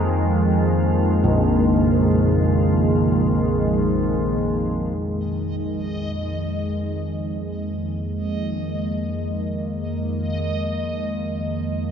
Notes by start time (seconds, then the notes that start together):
Already playing: F2 D#3 F3 G#3 A#3
1.24 A#2
4.98 F2 F3 D#5
6.60 A#3